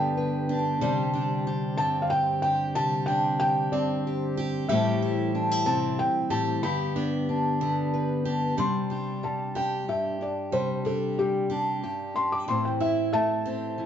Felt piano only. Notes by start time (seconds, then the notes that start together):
Already playing: G5
0.82 D5
1.77 A5
2.02 F5
2.10 G5
2.42 G5
2.75 A5
3.06 G5
3.40 G5
3.72 D5
4.69 E5
5.66 A5
5.99 G5
6.31 A5
6.63 B5
8.59 C6
9.24 A5
9.56 G5
9.89 E5
10.22 D5
10.53 C5
10.86 A4
11.19 G4
12.16 C6
12.32 D6
12.48 C6
12.65 G5
12.81 E5
13.13 E5 A5